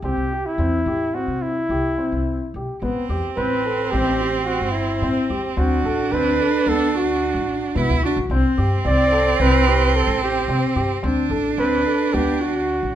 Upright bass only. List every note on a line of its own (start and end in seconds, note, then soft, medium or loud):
0.02 0.15 C2 medium
0.17 0.42 C2 medium
0.58 0.84 E2 medium
0.86 1.24 A2 medium
1.28 1.66 C3 medium
1.69 1.95 C2 medium
2.12 2.38 C2 medium
2.54 2.67 B1 medium
2.82 2.95 A1 medium
3.09 3.22 E2 medium
3.37 3.89 A1 medium
3.93 4.58 A1 medium
4.61 4.99 G1 medium
5.02 5.15 A2 medium
5.30 5.43 E2 medium
5.57 5.83 D2 medium
5.84 6.10 A1 medium
6.12 6.37 D2 medium
6.66 7.31 D2 medium
7.34 7.60 A1 medium
7.76 7.89 C3 medium
7.90 8.03 D2 medium
8.17 8.29 A1 medium
8.30 8.43 C2 medium
8.58 8.70 G2 medium
8.85 9.36 C2 medium
9.40 10.04 C2 medium
10.07 10.45 A1 medium
10.48 10.61 C3 medium
10.76 10.89 G2 medium
11.03 11.29 D2 loud
11.30 11.56 A1 medium
11.57 11.83 D2 medium
12.14 12.79 D2 medium
12.83 12.95 A1 medium